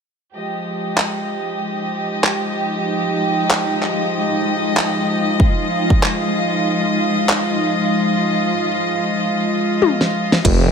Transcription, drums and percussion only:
0, 0, Header, 1, 2, 480
1, 0, Start_track
1, 0, Key_signature, -4, "minor"
1, 0, Tempo, 631579
1, 261, Time_signature, 4, 2, 24, 8
1, 8144, End_track
2, 0, Start_track
2, 0, Title_t, "Drums"
2, 741, Note_on_c, 9, 39, 107
2, 817, Note_off_c, 9, 39, 0
2, 1703, Note_on_c, 9, 39, 112
2, 1779, Note_off_c, 9, 39, 0
2, 2665, Note_on_c, 9, 39, 113
2, 2741, Note_off_c, 9, 39, 0
2, 2908, Note_on_c, 9, 39, 34
2, 2984, Note_off_c, 9, 39, 0
2, 3625, Note_on_c, 9, 39, 117
2, 3701, Note_off_c, 9, 39, 0
2, 4102, Note_on_c, 9, 36, 111
2, 4178, Note_off_c, 9, 36, 0
2, 4486, Note_on_c, 9, 36, 99
2, 4562, Note_off_c, 9, 36, 0
2, 4585, Note_on_c, 9, 39, 113
2, 4661, Note_off_c, 9, 39, 0
2, 5543, Note_on_c, 9, 39, 123
2, 5619, Note_off_c, 9, 39, 0
2, 7463, Note_on_c, 9, 48, 60
2, 7539, Note_off_c, 9, 48, 0
2, 7606, Note_on_c, 9, 38, 61
2, 7682, Note_off_c, 9, 38, 0
2, 7846, Note_on_c, 9, 38, 79
2, 7922, Note_off_c, 9, 38, 0
2, 7940, Note_on_c, 9, 36, 115
2, 7941, Note_on_c, 9, 42, 66
2, 7941, Note_on_c, 9, 49, 86
2, 8016, Note_off_c, 9, 36, 0
2, 8017, Note_off_c, 9, 42, 0
2, 8017, Note_off_c, 9, 49, 0
2, 8144, End_track
0, 0, End_of_file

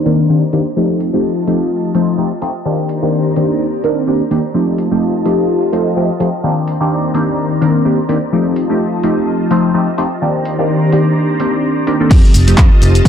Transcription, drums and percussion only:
0, 0, Header, 1, 2, 480
1, 0, Start_track
1, 0, Tempo, 472441
1, 780, Time_signature, 4, 2, 24, 8
1, 13295, End_track
2, 0, Start_track
2, 0, Title_t, "Drums"
2, 59, Note_on_c, 9, 46, 105
2, 160, Note_off_c, 9, 46, 0
2, 538, Note_on_c, 9, 46, 86
2, 639, Note_off_c, 9, 46, 0
2, 1019, Note_on_c, 9, 46, 98
2, 1121, Note_off_c, 9, 46, 0
2, 1499, Note_on_c, 9, 46, 93
2, 1600, Note_off_c, 9, 46, 0
2, 1977, Note_on_c, 9, 46, 106
2, 2079, Note_off_c, 9, 46, 0
2, 2457, Note_on_c, 9, 46, 85
2, 2559, Note_off_c, 9, 46, 0
2, 2937, Note_on_c, 9, 46, 105
2, 3039, Note_off_c, 9, 46, 0
2, 3417, Note_on_c, 9, 46, 90
2, 3518, Note_off_c, 9, 46, 0
2, 3899, Note_on_c, 9, 46, 104
2, 4000, Note_off_c, 9, 46, 0
2, 4381, Note_on_c, 9, 46, 86
2, 4482, Note_off_c, 9, 46, 0
2, 4860, Note_on_c, 9, 46, 97
2, 4961, Note_off_c, 9, 46, 0
2, 5340, Note_on_c, 9, 46, 89
2, 5441, Note_off_c, 9, 46, 0
2, 5822, Note_on_c, 9, 46, 101
2, 5923, Note_off_c, 9, 46, 0
2, 6303, Note_on_c, 9, 46, 84
2, 6404, Note_off_c, 9, 46, 0
2, 6782, Note_on_c, 9, 46, 97
2, 6884, Note_off_c, 9, 46, 0
2, 7260, Note_on_c, 9, 46, 85
2, 7362, Note_off_c, 9, 46, 0
2, 7740, Note_on_c, 9, 46, 101
2, 7842, Note_off_c, 9, 46, 0
2, 8221, Note_on_c, 9, 46, 79
2, 8322, Note_off_c, 9, 46, 0
2, 8699, Note_on_c, 9, 46, 96
2, 8800, Note_off_c, 9, 46, 0
2, 9178, Note_on_c, 9, 46, 86
2, 9280, Note_off_c, 9, 46, 0
2, 9660, Note_on_c, 9, 46, 93
2, 9761, Note_off_c, 9, 46, 0
2, 10140, Note_on_c, 9, 46, 81
2, 10242, Note_off_c, 9, 46, 0
2, 10620, Note_on_c, 9, 46, 97
2, 10722, Note_off_c, 9, 46, 0
2, 11099, Note_on_c, 9, 46, 85
2, 11200, Note_off_c, 9, 46, 0
2, 11579, Note_on_c, 9, 46, 100
2, 11681, Note_off_c, 9, 46, 0
2, 12061, Note_on_c, 9, 46, 84
2, 12163, Note_off_c, 9, 46, 0
2, 12301, Note_on_c, 9, 36, 119
2, 12302, Note_on_c, 9, 42, 66
2, 12302, Note_on_c, 9, 49, 100
2, 12309, Note_on_c, 9, 82, 44
2, 12403, Note_off_c, 9, 36, 0
2, 12404, Note_off_c, 9, 42, 0
2, 12404, Note_off_c, 9, 49, 0
2, 12411, Note_off_c, 9, 82, 0
2, 12445, Note_on_c, 9, 82, 32
2, 12540, Note_on_c, 9, 46, 105
2, 12547, Note_off_c, 9, 82, 0
2, 12547, Note_on_c, 9, 82, 81
2, 12642, Note_off_c, 9, 46, 0
2, 12649, Note_off_c, 9, 82, 0
2, 12677, Note_on_c, 9, 42, 54
2, 12684, Note_on_c, 9, 82, 34
2, 12779, Note_off_c, 9, 42, 0
2, 12781, Note_on_c, 9, 36, 117
2, 12782, Note_on_c, 9, 39, 124
2, 12782, Note_on_c, 9, 42, 72
2, 12786, Note_off_c, 9, 82, 0
2, 12789, Note_on_c, 9, 82, 45
2, 12883, Note_off_c, 9, 36, 0
2, 12883, Note_off_c, 9, 39, 0
2, 12883, Note_off_c, 9, 42, 0
2, 12890, Note_off_c, 9, 82, 0
2, 13023, Note_on_c, 9, 46, 91
2, 13030, Note_on_c, 9, 82, 83
2, 13125, Note_off_c, 9, 46, 0
2, 13132, Note_off_c, 9, 82, 0
2, 13160, Note_on_c, 9, 42, 56
2, 13166, Note_on_c, 9, 82, 36
2, 13261, Note_off_c, 9, 42, 0
2, 13261, Note_on_c, 9, 36, 107
2, 13268, Note_off_c, 9, 82, 0
2, 13295, Note_off_c, 9, 36, 0
2, 13295, End_track
0, 0, End_of_file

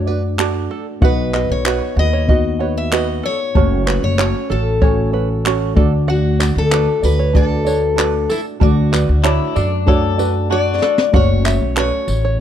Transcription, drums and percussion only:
0, 0, Header, 1, 2, 480
1, 0, Start_track
1, 0, Tempo, 632244
1, 774, Time_signature, 4, 2, 24, 8
1, 9415, End_track
2, 0, Start_track
2, 0, Title_t, "Drums"
2, 296, Note_on_c, 9, 39, 106
2, 372, Note_off_c, 9, 39, 0
2, 773, Note_on_c, 9, 36, 111
2, 849, Note_off_c, 9, 36, 0
2, 1018, Note_on_c, 9, 39, 78
2, 1094, Note_off_c, 9, 39, 0
2, 1256, Note_on_c, 9, 39, 100
2, 1332, Note_off_c, 9, 39, 0
2, 1736, Note_on_c, 9, 36, 92
2, 1812, Note_off_c, 9, 36, 0
2, 2220, Note_on_c, 9, 39, 112
2, 2296, Note_off_c, 9, 39, 0
2, 2698, Note_on_c, 9, 36, 99
2, 2774, Note_off_c, 9, 36, 0
2, 2942, Note_on_c, 9, 39, 86
2, 3018, Note_off_c, 9, 39, 0
2, 3181, Note_on_c, 9, 39, 102
2, 3257, Note_off_c, 9, 39, 0
2, 3659, Note_on_c, 9, 36, 94
2, 3735, Note_off_c, 9, 36, 0
2, 4144, Note_on_c, 9, 39, 104
2, 4220, Note_off_c, 9, 39, 0
2, 4378, Note_on_c, 9, 36, 100
2, 4454, Note_off_c, 9, 36, 0
2, 4861, Note_on_c, 9, 54, 65
2, 4865, Note_on_c, 9, 39, 87
2, 4937, Note_off_c, 9, 54, 0
2, 4941, Note_off_c, 9, 39, 0
2, 5102, Note_on_c, 9, 39, 106
2, 5178, Note_off_c, 9, 39, 0
2, 5341, Note_on_c, 9, 54, 62
2, 5417, Note_off_c, 9, 54, 0
2, 5579, Note_on_c, 9, 36, 97
2, 5655, Note_off_c, 9, 36, 0
2, 5819, Note_on_c, 9, 54, 62
2, 5895, Note_off_c, 9, 54, 0
2, 6065, Note_on_c, 9, 39, 102
2, 6141, Note_off_c, 9, 39, 0
2, 6300, Note_on_c, 9, 54, 65
2, 6376, Note_off_c, 9, 54, 0
2, 6539, Note_on_c, 9, 36, 114
2, 6615, Note_off_c, 9, 36, 0
2, 6780, Note_on_c, 9, 54, 60
2, 6783, Note_on_c, 9, 39, 83
2, 6856, Note_off_c, 9, 54, 0
2, 6859, Note_off_c, 9, 39, 0
2, 7018, Note_on_c, 9, 39, 105
2, 7094, Note_off_c, 9, 39, 0
2, 7259, Note_on_c, 9, 54, 62
2, 7335, Note_off_c, 9, 54, 0
2, 7497, Note_on_c, 9, 36, 92
2, 7573, Note_off_c, 9, 36, 0
2, 7738, Note_on_c, 9, 54, 62
2, 7814, Note_off_c, 9, 54, 0
2, 8216, Note_on_c, 9, 38, 84
2, 8292, Note_off_c, 9, 38, 0
2, 8336, Note_on_c, 9, 38, 77
2, 8411, Note_off_c, 9, 38, 0
2, 8455, Note_on_c, 9, 36, 111
2, 8531, Note_off_c, 9, 36, 0
2, 8693, Note_on_c, 9, 54, 61
2, 8696, Note_on_c, 9, 39, 86
2, 8769, Note_off_c, 9, 54, 0
2, 8772, Note_off_c, 9, 39, 0
2, 8933, Note_on_c, 9, 39, 101
2, 9009, Note_off_c, 9, 39, 0
2, 9170, Note_on_c, 9, 54, 66
2, 9246, Note_off_c, 9, 54, 0
2, 9415, End_track
0, 0, End_of_file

